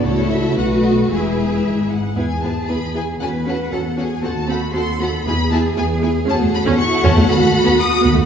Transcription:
<<
  \new Staff \with { instrumentName = "Violin section" } { \time 2/4 \key e \major \tempo 4 = 117 cis''8 e''8 fis''8 dis''8 | e''8 e''4 fis''8 | gis''8 a''8 b''8 gis''8 | gis''8 fis''4 gis''8 |
a''8 b''8 bis''8 b''8 | b''8 a''8 gis''8 r8 | a''8 b''8 cis'''8 a''8 | b''4 dis'''8 b''8 | }
  \new Staff \with { instrumentName = "Violin section" } { \time 2/4 \key e \major <e' a'>4 <fis' b'>4 | <gis' b'>4. r8 | <gis' b'>8 <gis' b'>8 <gis' b'>8 <gis' b'>8 | <a' fis''>8 <a' fis''>8 <a' fis''>8 <a' fis''>8 |
<a' fis''>8 <a' fis''>8 <a' fis''>8 <a' fis''>8 | <gis' gis''>8 <gis' gis''>8 <gis' gis''>8 <gis' gis''>8 | <a' fis''>2~ | <a' fis''>2 | }
  \new Staff \with { instrumentName = "Cello section" } { \time 2/4 \key e \major cis4 b,4 | e,4 gis,4 | gis'2 | b'4 a'8 gis'8 |
fis'4 a'4 | gis'2~ | gis'4 e'4 | fis'2 | }
  \new Staff \with { instrumentName = "Viola section" } { \time 2/4 \key e \major << { fis'2 | e'4. r8 | e'8 e'8 e'8 e'8 | fis'8 fis'8 fis'8 fis'8 |
fis'8 fis'8 fis'8 fis'8 | e'8 e'8 e'8 e'8 | fis'2~ | fis'2 | } \\ { a4 a4 | gis4. r8 | b8 b8 b8 b8 | cis'8 cis'8 cis'8 cis'8 |
bis8 bis8 bis8 bis8 | b8 b8 b8 b8 | cis'16 a16 r16 cis'16 r8 cis'16 a16 | b16 a16 r16 b16 r8 b16 a16 | } >> }
  \new Staff \with { instrumentName = "Double bass section" } { \clef bass \time 2/4 \key e \major cis,4 b,,4 | e,,4 gis,,4 | e,4 e,4 | e,4 e,4 |
dis,4 dis,4 | e,4 e,4 | e,16 e,16 r16 e,16 r8 e,16 e,16 | dis,16 dis,16 r16 dis,16 r8 dis,16 dis,16 | }
>>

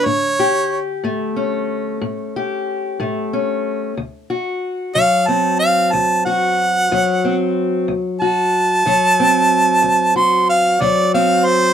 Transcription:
<<
  \new Staff \with { instrumentName = "Harmonica" } { \time 12/8 \key d \mixolydian \tempo 4. = 61 cis''4 r1 r4 | r4. f''8 a''8 f''8 a''8 fis''2 r8 | r8 a''2. c'''8 f''8 d''8 f''8 c''8 | }
  \new Staff \with { instrumentName = "Steel-string acoustic guitar" } { \clef bass \time 12/8 \key d \mixolydian << { d8 g'4 a8 cis'4. g'4 a8 cis'4 | r8 fis'4 fis8 c'4. fis'4 fis8 c'4 | r8 fis'4 fis8 c'4. fis'4 fis8 c'4 | } \\ { a,4 r8 a,4 r8 a,4 r8 a,4 r8 | d,4 r8 d,4 r8 d,4 r8 d,4 r8 | d,4 r8 d,4 r8 d,4 r8 d,4 r8 | } >> }
>>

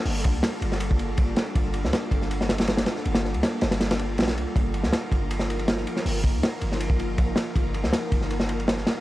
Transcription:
<<
  \new Staff \with { instrumentName = "Ambient pad" } { \time 4/4 \key g \minor \tempo 4 = 160 r8. <g bes d' f' a'>4.~ <g bes d' f' a'>16 r4. | r8. <g bes d' f' a'>4.~ <g bes d' f' a'>16 r4. | r8. <g bes d' f' a'>4.~ <g bes d' f' a'>16 r4. | r8. <f bes ees' f' bes'>4.~ <f bes ees' f' bes'>16 r4. |
r8. <f bes ees' f' bes'>4.~ <f bes ees' f' bes'>16 r4. | r8. <f bes ees' f' bes'>4.~ <f bes ees' f' bes'>16 r4. | }
  \new Staff \with { instrumentName = "808-style bass" } { \clef bass \time 4/4 \key g \minor g,,8. d,16 r8 g,,2 r8 | g,,8. d,16 r8 g,,2 r8 | g,,8. d,16 r8 g,,4. bes,,8 c,16 r16 | g,,8. d,16 r8 g,,2 r8 |
g,,8. d,16 r8 g,,2 r8 | g,,8. d,16 r8 g,,2 r8 | }
  \new DrumStaff \with { instrumentName = "Drums" } \drummode { \time 4/4 hho8 <bd cymr>8 <cymr sn>8 cymr16 sn16 cymr16 bd16 cymr8 <bd cymr>8 <cymr sn>8 | <bd cymr>8 cymr16 sn16 <cymr sn>8 <bd cymr>16 sn16 cymr16 sn16 <cymr sn>16 <cymr sn>16 <cymr sn>16 <cymr sn>16 <cymr sn>16 sn16 | cymr16 <cymr sn>16 sn16 cymr16 <cymr sn>8 <cymr sn>16 <cymr sn>16 <cymr sn>16 <cymr sn>16 cymr8 <cymr sn>32 <cymr sn>32 <cymr sn>16 cymr8 | <bd cymr>8 cymr16 sn16 <cymr sn>8 <bd cymr>8 cymr16 sn16 cymr16 cymr16 <cymr sn>16 sn16 cymr16 sn16 |
hho8 <bd cymr>8 <cymr sn>8 cymr16 sn16 cymr16 bd16 cymr8 <bd cymr>8 <cymr sn>8 | <bd cymr>8 cymr16 sn16 <cymr sn>8 <bd cymr>16 sn16 cymr16 sn16 cymr16 cymr16 <cymr sn>16 sn16 <cymr sn>8 | }
>>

